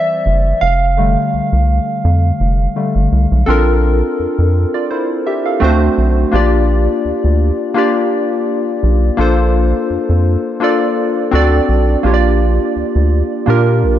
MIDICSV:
0, 0, Header, 1, 3, 480
1, 0, Start_track
1, 0, Tempo, 714286
1, 414, Time_signature, 4, 2, 24, 8
1, 9401, End_track
2, 0, Start_track
2, 0, Title_t, "Synth keys"
2, 0, Program_c, 0, 88
2, 0, Control_c, 0, 64, 127
2, 0, Note_on_c, 0, 72, 83
2, 0, Note_on_c, 0, 74, 91
2, 0, Note_on_c, 0, 76, 103
2, 411, Note_on_c, 0, 77, 97
2, 422, Control_c, 0, 64, 0
2, 424, Note_off_c, 0, 74, 0
2, 427, Note_off_c, 0, 76, 0
2, 428, Note_off_c, 0, 72, 0
2, 533, Control_c, 0, 64, 127
2, 653, Note_on_c, 0, 50, 54
2, 657, Note_on_c, 0, 55, 52
2, 662, Note_on_c, 0, 57, 63
2, 866, Note_off_c, 0, 77, 0
2, 1346, Note_off_c, 0, 50, 0
2, 1349, Note_off_c, 0, 55, 0
2, 1351, Note_off_c, 0, 57, 0
2, 1855, Note_on_c, 0, 50, 50
2, 1858, Note_on_c, 0, 55, 47
2, 1860, Note_on_c, 0, 57, 57
2, 2070, Note_off_c, 0, 50, 0
2, 2072, Note_off_c, 0, 55, 0
2, 2073, Note_off_c, 0, 57, 0
2, 2327, Note_on_c, 0, 69, 90
2, 2333, Note_on_c, 0, 60, 78
2, 2341, Note_on_c, 0, 62, 84
2, 2343, Control_c, 0, 64, 0
2, 2347, Note_on_c, 0, 65, 81
2, 2353, Note_on_c, 0, 70, 101
2, 2452, Control_c, 0, 64, 127
2, 3060, Note_off_c, 0, 65, 0
2, 3063, Note_off_c, 0, 70, 0
2, 3187, Note_on_c, 0, 74, 68
2, 3192, Note_on_c, 0, 65, 57
2, 3224, Note_off_c, 0, 69, 0
2, 3227, Note_off_c, 0, 60, 0
2, 3231, Note_off_c, 0, 62, 0
2, 3290, Note_off_c, 0, 74, 0
2, 3293, Note_off_c, 0, 65, 0
2, 3297, Note_on_c, 0, 72, 72
2, 3301, Note_on_c, 0, 64, 61
2, 3523, Note_off_c, 0, 72, 0
2, 3525, Note_off_c, 0, 64, 0
2, 3538, Note_on_c, 0, 76, 69
2, 3542, Note_on_c, 0, 67, 61
2, 3659, Note_off_c, 0, 76, 0
2, 3661, Note_off_c, 0, 67, 0
2, 3666, Note_on_c, 0, 77, 67
2, 3671, Note_on_c, 0, 69, 54
2, 3763, Note_on_c, 0, 57, 101
2, 3771, Note_on_c, 0, 60, 92
2, 3777, Note_on_c, 0, 62, 92
2, 3782, Control_c, 0, 64, 0
2, 3783, Note_on_c, 0, 66, 86
2, 3790, Note_on_c, 0, 72, 105
2, 3893, Note_off_c, 0, 77, 0
2, 3895, Note_off_c, 0, 69, 0
2, 3913, Control_c, 0, 64, 127
2, 4215, Note_off_c, 0, 57, 0
2, 4219, Note_off_c, 0, 60, 0
2, 4222, Note_off_c, 0, 62, 0
2, 4225, Note_off_c, 0, 66, 0
2, 4229, Note_off_c, 0, 72, 0
2, 4243, Note_on_c, 0, 58, 86
2, 4250, Note_on_c, 0, 62, 87
2, 4257, Note_on_c, 0, 65, 85
2, 4261, Control_c, 0, 64, 0
2, 4263, Note_on_c, 0, 67, 86
2, 4270, Note_on_c, 0, 74, 101
2, 4390, Control_c, 0, 64, 127
2, 5142, Note_off_c, 0, 58, 0
2, 5146, Note_off_c, 0, 62, 0
2, 5149, Note_off_c, 0, 65, 0
2, 5152, Note_off_c, 0, 67, 0
2, 5156, Note_off_c, 0, 74, 0
2, 5204, Note_on_c, 0, 58, 94
2, 5211, Note_on_c, 0, 62, 84
2, 5217, Note_on_c, 0, 65, 84
2, 5225, Note_on_c, 0, 67, 84
2, 5231, Note_on_c, 0, 74, 95
2, 6102, Note_off_c, 0, 58, 0
2, 6106, Note_off_c, 0, 62, 0
2, 6109, Note_off_c, 0, 65, 0
2, 6113, Note_off_c, 0, 67, 0
2, 6116, Note_off_c, 0, 74, 0
2, 6163, Note_on_c, 0, 58, 92
2, 6170, Note_on_c, 0, 62, 86
2, 6177, Note_on_c, 0, 65, 83
2, 6182, Control_c, 0, 64, 0
2, 6183, Note_on_c, 0, 69, 82
2, 6190, Note_on_c, 0, 72, 104
2, 6300, Control_c, 0, 64, 127
2, 7062, Note_off_c, 0, 58, 0
2, 7066, Note_off_c, 0, 62, 0
2, 7069, Note_off_c, 0, 65, 0
2, 7072, Note_off_c, 0, 69, 0
2, 7075, Note_off_c, 0, 72, 0
2, 7124, Note_on_c, 0, 58, 87
2, 7129, Note_on_c, 0, 62, 83
2, 7136, Note_on_c, 0, 65, 83
2, 7142, Note_on_c, 0, 69, 83
2, 7149, Note_on_c, 0, 74, 99
2, 7602, Note_off_c, 0, 62, 0
2, 7603, Note_on_c, 0, 60, 100
2, 7609, Note_off_c, 0, 58, 0
2, 7610, Note_on_c, 0, 62, 88
2, 7615, Note_off_c, 0, 65, 0
2, 7615, Note_off_c, 0, 69, 0
2, 7615, Note_on_c, 0, 66, 85
2, 7621, Note_off_c, 0, 74, 0
2, 7623, Control_c, 0, 64, 0
2, 7623, Note_on_c, 0, 69, 89
2, 7629, Note_on_c, 0, 74, 110
2, 7742, Control_c, 0, 64, 127
2, 8055, Note_off_c, 0, 60, 0
2, 8059, Note_off_c, 0, 62, 0
2, 8061, Note_off_c, 0, 66, 0
2, 8065, Note_off_c, 0, 69, 0
2, 8068, Note_off_c, 0, 74, 0
2, 8085, Note_on_c, 0, 58, 90
2, 8092, Note_on_c, 0, 62, 81
2, 8099, Note_on_c, 0, 65, 82
2, 8102, Control_c, 0, 64, 0
2, 8106, Note_on_c, 0, 67, 80
2, 8112, Note_on_c, 0, 73, 82
2, 8150, Note_off_c, 0, 73, 0
2, 8156, Note_on_c, 0, 74, 100
2, 8231, Control_c, 0, 64, 127
2, 8983, Note_off_c, 0, 58, 0
2, 8987, Note_off_c, 0, 62, 0
2, 8990, Note_off_c, 0, 65, 0
2, 8994, Note_off_c, 0, 67, 0
2, 9019, Note_off_c, 0, 74, 0
2, 9046, Note_on_c, 0, 58, 88
2, 9053, Note_on_c, 0, 62, 81
2, 9058, Note_on_c, 0, 65, 76
2, 9066, Note_on_c, 0, 67, 77
2, 9071, Note_on_c, 0, 70, 101
2, 9401, Note_off_c, 0, 58, 0
2, 9401, Note_off_c, 0, 62, 0
2, 9401, Note_off_c, 0, 65, 0
2, 9401, Note_off_c, 0, 67, 0
2, 9401, Note_off_c, 0, 70, 0
2, 9401, End_track
3, 0, Start_track
3, 0, Title_t, "Analog synth bass"
3, 0, Program_c, 1, 38
3, 175, Note_on_c, 1, 30, 93
3, 358, Note_off_c, 1, 30, 0
3, 416, Note_on_c, 1, 29, 103
3, 782, Note_off_c, 1, 29, 0
3, 898, Note_on_c, 1, 36, 45
3, 948, Note_off_c, 1, 36, 0
3, 1025, Note_on_c, 1, 36, 89
3, 1208, Note_off_c, 1, 36, 0
3, 1375, Note_on_c, 1, 41, 107
3, 1558, Note_off_c, 1, 41, 0
3, 1614, Note_on_c, 1, 29, 97
3, 1798, Note_off_c, 1, 29, 0
3, 1985, Note_on_c, 1, 31, 91
3, 2069, Note_off_c, 1, 31, 0
3, 2097, Note_on_c, 1, 36, 93
3, 2195, Note_off_c, 1, 36, 0
3, 2228, Note_on_c, 1, 35, 100
3, 2311, Note_off_c, 1, 35, 0
3, 2339, Note_on_c, 1, 34, 105
3, 2704, Note_off_c, 1, 34, 0
3, 2819, Note_on_c, 1, 41, 46
3, 2869, Note_off_c, 1, 41, 0
3, 2947, Note_on_c, 1, 41, 90
3, 3130, Note_off_c, 1, 41, 0
3, 3776, Note_on_c, 1, 38, 104
3, 3959, Note_off_c, 1, 38, 0
3, 4018, Note_on_c, 1, 35, 87
3, 4200, Note_off_c, 1, 35, 0
3, 4257, Note_on_c, 1, 34, 110
3, 4623, Note_off_c, 1, 34, 0
3, 4737, Note_on_c, 1, 38, 48
3, 4788, Note_off_c, 1, 38, 0
3, 4867, Note_on_c, 1, 38, 85
3, 5049, Note_off_c, 1, 38, 0
3, 5935, Note_on_c, 1, 35, 87
3, 6118, Note_off_c, 1, 35, 0
3, 6174, Note_on_c, 1, 34, 107
3, 6542, Note_off_c, 1, 34, 0
3, 6654, Note_on_c, 1, 41, 49
3, 6706, Note_off_c, 1, 41, 0
3, 6783, Note_on_c, 1, 41, 87
3, 6967, Note_off_c, 1, 41, 0
3, 7615, Note_on_c, 1, 38, 103
3, 7798, Note_off_c, 1, 38, 0
3, 7854, Note_on_c, 1, 35, 83
3, 8038, Note_off_c, 1, 35, 0
3, 8094, Note_on_c, 1, 34, 112
3, 8461, Note_off_c, 1, 34, 0
3, 8575, Note_on_c, 1, 38, 49
3, 8627, Note_off_c, 1, 38, 0
3, 8706, Note_on_c, 1, 38, 92
3, 8889, Note_off_c, 1, 38, 0
3, 9057, Note_on_c, 1, 46, 110
3, 9297, Note_on_c, 1, 34, 84
3, 9307, Note_off_c, 1, 46, 0
3, 9401, Note_off_c, 1, 34, 0
3, 9401, End_track
0, 0, End_of_file